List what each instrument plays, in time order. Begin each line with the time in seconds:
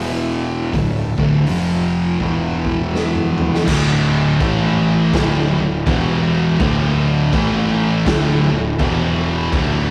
Already playing: fingered electric bass E1, distorted electric guitar E2 B2 E3, string machine E4 B4 E5
0.00 open hi-hat
0.73 fingered electric bass D1, distorted electric guitar D2 A2, string machine D4 A4, kick, open hi-hat
1.17 fingered electric bass D1, distorted electric guitar D2 A2 D3, kick
1.47 fingered electric bass F1, distorted electric guitar F2 C3 F3, string machine F4 C5 G5, open hi-hat
2.20 fingered electric bass E1, distorted electric guitar E2 B2 E3, string machine E4 B4 E5, kick
2.65 kick
2.95 snare
3.16 mid tom
3.38 floor tom
3.54 snare
3.67 fingered electric bass D1, distorted electric guitar D2 A2 D3, kick, crash
4.40 fingered electric bass A1, distorted electric guitar A2 E3 A3, kick, crash
5.13 fingered electric bass D1, distorted electric guitar D2 A2 D3, kick, snare, crash
5.58 fingered electric bass D1, distorted electric guitar D2 A2
5.86 fingered electric bass E1, distorted electric guitar E2 B2 E3, kick, crash
6.59 fingered electric bass D1, distorted electric guitar D2 A2 D3, kick, crash
7.33 fingered electric bass A1, distorted electric guitar A2 E3 A3, kick, crash
8.06 fingered electric bass D1, distorted electric guitar D2 A2 D3, kick, snare, crash
8.50 fingered electric bass D1, distorted electric guitar D2 A2
8.79 fingered electric bass E1, distorted electric guitar E2 B2 E3, kick, crash
9.52 fingered electric bass D1, distorted electric guitar D2 A2 D3, string machine D4 A4 E5, kick, crash